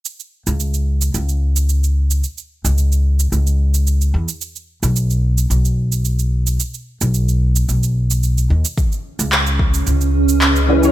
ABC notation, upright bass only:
X:1
M:4/4
L:1/16
Q:1/4=110
K:C#dor
V:1 name="Upright bass" clef=bass
z3 C,,4- C,, C,,8 | z3 C,,4- C,, C,,6 E,, z | z3 B,,,4- B,,, B,,,8 | z3 B,,,4- B,,, B,,,6 D,, z |
z3 C,,4- C,, C,,8 |]